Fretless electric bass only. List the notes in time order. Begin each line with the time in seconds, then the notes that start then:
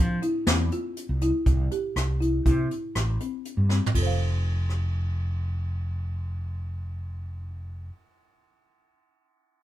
Already playing: F3
0.47 E2
1.09 C2
1.46 C2
1.96 C2
2.46 C3
2.95 A1
3.57 G2
3.95 F1